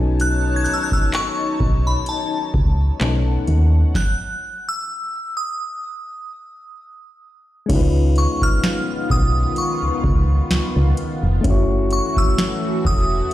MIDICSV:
0, 0, Header, 1, 6, 480
1, 0, Start_track
1, 0, Tempo, 937500
1, 99, Time_signature, 4, 2, 24, 8
1, 6829, End_track
2, 0, Start_track
2, 0, Title_t, "Synth bell"
2, 0, Program_c, 0, 98
2, 108, Note_on_c, 0, 90, 106
2, 288, Note_off_c, 0, 90, 0
2, 288, Note_on_c, 0, 92, 96
2, 326, Note_off_c, 0, 92, 0
2, 329, Note_on_c, 0, 90, 90
2, 372, Note_off_c, 0, 90, 0
2, 376, Note_on_c, 0, 88, 87
2, 423, Note_off_c, 0, 88, 0
2, 428, Note_on_c, 0, 90, 89
2, 473, Note_off_c, 0, 90, 0
2, 477, Note_on_c, 0, 88, 84
2, 576, Note_off_c, 0, 88, 0
2, 587, Note_on_c, 0, 85, 86
2, 957, Note_on_c, 0, 83, 78
2, 964, Note_off_c, 0, 85, 0
2, 1067, Note_off_c, 0, 83, 0
2, 1069, Note_on_c, 0, 81, 78
2, 1764, Note_off_c, 0, 81, 0
2, 2027, Note_on_c, 0, 90, 102
2, 2399, Note_on_c, 0, 88, 88
2, 2404, Note_off_c, 0, 90, 0
2, 2749, Note_on_c, 0, 87, 89
2, 2755, Note_off_c, 0, 88, 0
2, 3684, Note_off_c, 0, 87, 0
2, 4188, Note_on_c, 0, 85, 84
2, 4317, Note_off_c, 0, 85, 0
2, 4317, Note_on_c, 0, 89, 100
2, 4665, Note_on_c, 0, 87, 98
2, 4674, Note_off_c, 0, 89, 0
2, 4905, Note_on_c, 0, 85, 78
2, 4909, Note_off_c, 0, 87, 0
2, 5602, Note_off_c, 0, 85, 0
2, 6106, Note_on_c, 0, 85, 90
2, 6236, Note_off_c, 0, 85, 0
2, 6236, Note_on_c, 0, 88, 99
2, 6587, Note_on_c, 0, 87, 100
2, 6593, Note_off_c, 0, 88, 0
2, 6829, Note_off_c, 0, 87, 0
2, 6829, End_track
3, 0, Start_track
3, 0, Title_t, "Analog synth pad"
3, 0, Program_c, 1, 89
3, 0, Note_on_c, 1, 63, 82
3, 0, Note_on_c, 1, 73, 74
3, 0, Note_on_c, 1, 81, 85
3, 1541, Note_on_c, 1, 78, 66
3, 2000, Note_off_c, 1, 73, 0
3, 2000, Note_off_c, 1, 81, 0
3, 2001, Note_off_c, 1, 63, 0
3, 2015, Note_off_c, 1, 78, 0
3, 3939, Note_on_c, 1, 51, 77
3, 3939, Note_on_c, 1, 59, 70
3, 3939, Note_on_c, 1, 65, 87
3, 5840, Note_off_c, 1, 51, 0
3, 5840, Note_off_c, 1, 59, 0
3, 5840, Note_off_c, 1, 65, 0
3, 5860, Note_on_c, 1, 52, 80
3, 5860, Note_on_c, 1, 57, 75
3, 5860, Note_on_c, 1, 66, 85
3, 6829, Note_off_c, 1, 52, 0
3, 6829, Note_off_c, 1, 57, 0
3, 6829, Note_off_c, 1, 66, 0
3, 6829, End_track
4, 0, Start_track
4, 0, Title_t, "Synth keys"
4, 0, Program_c, 2, 88
4, 0, Control_c, 2, 64, 127
4, 0, Note_on_c, 2, 54, 79
4, 0, Note_on_c, 2, 59, 77
4, 0, Note_on_c, 2, 61, 75
4, 0, Note_on_c, 2, 63, 75
4, 0, Note_on_c, 2, 69, 90
4, 1510, Note_off_c, 2, 54, 0
4, 1516, Note_off_c, 2, 59, 0
4, 1522, Note_off_c, 2, 61, 0
4, 1528, Note_off_c, 2, 63, 0
4, 1533, Note_on_c, 2, 57, 63
4, 1534, Note_off_c, 2, 69, 0
4, 1539, Note_on_c, 2, 59, 59
4, 1545, Control_c, 2, 64, 0
4, 1545, Note_on_c, 2, 61, 61
4, 1551, Note_on_c, 2, 63, 59
4, 1558, Note_on_c, 2, 69, 70
4, 1621, Control_c, 2, 64, 127
4, 2016, Note_off_c, 2, 57, 0
4, 2019, Note_off_c, 2, 59, 0
4, 2022, Note_off_c, 2, 61, 0
4, 2025, Note_off_c, 2, 63, 0
4, 2026, Control_c, 2, 64, 0
4, 2028, Note_off_c, 2, 69, 0
4, 3922, Note_on_c, 2, 56, 80
4, 3934, Note_on_c, 2, 61, 76
4, 3946, Note_on_c, 2, 63, 79
4, 3958, Note_on_c, 2, 65, 74
4, 3970, Note_on_c, 2, 71, 89
4, 4034, Control_c, 2, 64, 127
4, 5830, Note_off_c, 2, 56, 0
4, 5836, Note_off_c, 2, 61, 0
4, 5842, Note_off_c, 2, 63, 0
4, 5842, Note_on_c, 2, 57, 81
4, 5848, Note_off_c, 2, 65, 0
4, 5854, Note_off_c, 2, 71, 0
4, 5854, Note_on_c, 2, 61, 75
4, 5865, Control_c, 2, 64, 0
4, 5866, Note_on_c, 2, 64, 74
4, 5878, Note_on_c, 2, 66, 74
4, 5890, Note_on_c, 2, 73, 88
4, 5947, Control_c, 2, 64, 127
4, 6829, Note_off_c, 2, 57, 0
4, 6829, Note_off_c, 2, 61, 0
4, 6829, Note_off_c, 2, 64, 0
4, 6829, Note_off_c, 2, 66, 0
4, 6829, Note_off_c, 2, 73, 0
4, 6829, End_track
5, 0, Start_track
5, 0, Title_t, "FM bass"
5, 0, Program_c, 3, 39
5, 0, Note_on_c, 3, 35, 110
5, 345, Note_off_c, 3, 35, 0
5, 471, Note_on_c, 3, 35, 50
5, 514, Note_off_c, 3, 35, 0
5, 821, Note_on_c, 3, 35, 91
5, 1011, Note_off_c, 3, 35, 0
5, 1301, Note_on_c, 3, 37, 84
5, 1491, Note_off_c, 3, 37, 0
5, 1542, Note_on_c, 3, 35, 108
5, 1732, Note_off_c, 3, 35, 0
5, 1782, Note_on_c, 3, 39, 89
5, 1972, Note_off_c, 3, 39, 0
5, 3941, Note_on_c, 3, 37, 115
5, 4234, Note_off_c, 3, 37, 0
5, 4311, Note_on_c, 3, 35, 48
5, 4354, Note_off_c, 3, 35, 0
5, 4661, Note_on_c, 3, 35, 89
5, 4851, Note_off_c, 3, 35, 0
5, 5031, Note_on_c, 3, 37, 47
5, 5075, Note_off_c, 3, 37, 0
5, 5140, Note_on_c, 3, 37, 92
5, 5331, Note_off_c, 3, 37, 0
5, 5382, Note_on_c, 3, 37, 52
5, 5434, Note_off_c, 3, 37, 0
5, 5511, Note_on_c, 3, 37, 93
5, 5598, Note_off_c, 3, 37, 0
5, 5751, Note_on_c, 3, 29, 85
5, 5838, Note_off_c, 3, 29, 0
5, 5861, Note_on_c, 3, 30, 107
5, 6154, Note_off_c, 3, 30, 0
5, 6230, Note_on_c, 3, 28, 48
5, 6274, Note_off_c, 3, 28, 0
5, 6580, Note_on_c, 3, 28, 98
5, 6771, Note_off_c, 3, 28, 0
5, 6829, End_track
6, 0, Start_track
6, 0, Title_t, "Drums"
6, 101, Note_on_c, 9, 42, 68
6, 152, Note_off_c, 9, 42, 0
6, 336, Note_on_c, 9, 42, 61
6, 387, Note_off_c, 9, 42, 0
6, 470, Note_on_c, 9, 36, 85
6, 521, Note_off_c, 9, 36, 0
6, 582, Note_on_c, 9, 39, 101
6, 582, Note_on_c, 9, 42, 65
6, 633, Note_off_c, 9, 39, 0
6, 633, Note_off_c, 9, 42, 0
6, 820, Note_on_c, 9, 36, 87
6, 871, Note_off_c, 9, 36, 0
6, 1056, Note_on_c, 9, 42, 64
6, 1107, Note_off_c, 9, 42, 0
6, 1300, Note_on_c, 9, 36, 87
6, 1351, Note_off_c, 9, 36, 0
6, 1540, Note_on_c, 9, 39, 99
6, 1541, Note_on_c, 9, 42, 61
6, 1592, Note_off_c, 9, 39, 0
6, 1592, Note_off_c, 9, 42, 0
6, 1779, Note_on_c, 9, 42, 57
6, 1830, Note_off_c, 9, 42, 0
6, 2020, Note_on_c, 9, 36, 109
6, 2023, Note_on_c, 9, 38, 90
6, 2071, Note_off_c, 9, 36, 0
6, 2074, Note_off_c, 9, 38, 0
6, 3940, Note_on_c, 9, 36, 123
6, 3940, Note_on_c, 9, 42, 74
6, 3940, Note_on_c, 9, 49, 96
6, 3991, Note_off_c, 9, 36, 0
6, 3991, Note_off_c, 9, 49, 0
6, 3992, Note_off_c, 9, 42, 0
6, 4176, Note_on_c, 9, 42, 62
6, 4227, Note_off_c, 9, 42, 0
6, 4310, Note_on_c, 9, 36, 93
6, 4361, Note_off_c, 9, 36, 0
6, 4422, Note_on_c, 9, 38, 110
6, 4422, Note_on_c, 9, 42, 69
6, 4473, Note_off_c, 9, 38, 0
6, 4473, Note_off_c, 9, 42, 0
6, 4660, Note_on_c, 9, 36, 91
6, 4711, Note_off_c, 9, 36, 0
6, 4896, Note_on_c, 9, 42, 67
6, 4947, Note_off_c, 9, 42, 0
6, 5140, Note_on_c, 9, 36, 91
6, 5191, Note_off_c, 9, 36, 0
6, 5380, Note_on_c, 9, 38, 108
6, 5380, Note_on_c, 9, 42, 67
6, 5431, Note_off_c, 9, 38, 0
6, 5432, Note_off_c, 9, 42, 0
6, 5618, Note_on_c, 9, 42, 60
6, 5669, Note_off_c, 9, 42, 0
6, 5859, Note_on_c, 9, 42, 74
6, 5860, Note_on_c, 9, 36, 118
6, 5910, Note_off_c, 9, 42, 0
6, 5911, Note_off_c, 9, 36, 0
6, 6096, Note_on_c, 9, 42, 65
6, 6147, Note_off_c, 9, 42, 0
6, 6229, Note_on_c, 9, 36, 90
6, 6280, Note_off_c, 9, 36, 0
6, 6341, Note_on_c, 9, 38, 116
6, 6341, Note_on_c, 9, 42, 69
6, 6392, Note_off_c, 9, 38, 0
6, 6392, Note_off_c, 9, 42, 0
6, 6579, Note_on_c, 9, 36, 93
6, 6631, Note_off_c, 9, 36, 0
6, 6829, End_track
0, 0, End_of_file